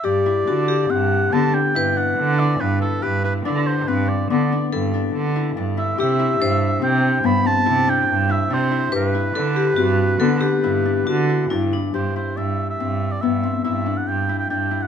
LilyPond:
<<
  \new Staff \with { instrumentName = "Oboe" } { \time 7/4 \key c \lydian \tempo 4 = 141 d''2 fis''4 a''8 g''4 fis''4 d''8 b'8 a'8 | b'8 b'8 d''8 c''8 b'8 d''8 d''4 r2 r8 e''8 | e''2 g''4 b''8 a''4 g''4 e''8 c''4 | b'1. r4 |
c''8 c''8 e''8. e''4 d''16 e''4 e''8. fis''16 g''8. g''16 g''8. fis''16 | }
  \new Staff \with { instrumentName = "Vibraphone" } { \time 7/4 \key c \lydian g'4 fis'8 g'2~ g'8 b'2.~ | b'1 a'2. | g'4 c''1. | b'4 a'8 g'8 fis'4 a'8 g'4. fis'4 e'8 d'8 |
r1. r4 | }
  \new Staff \with { instrumentName = "Harp" } { \time 7/4 \key c \lydian g'8 e'8 d'4 c'4 b8 d'8 e'8 d'4 e'8 d'8 e'8 | g'8 e'8 d'4 c'4 b8 d'8 e'8 d'4 e'8 d'8 e'8 | g'8 e'8 d'4 c'4 b8 c'8 e'8 d'4 e'8 d'8 e'8 | g'8 e'8 d'4 c'4 b8 d'8 e'8 d'4 e'8 d'8 e'8 |
g'8 e'8 d'4 c'4 b8 c'8 e'8 d'4 e'8 d'8 e'8 | }
  \new Staff \with { instrumentName = "Cello" } { \clef bass \time 7/4 \key c \lydian g,4 d4 g,4 d8 r8 g,4 d4 g,4 | g,4 d4 g,4 d8 r8 g,4 d4 g,4 | c4 g,4 c4 g,8 r8 c4 g,4 c4 | g,4 d4 g,4 d8 r8 g,4 d4 g,4 |
g,8 r8 g,4 g,4 g,4 g,4 g,4 g,4 | }
>>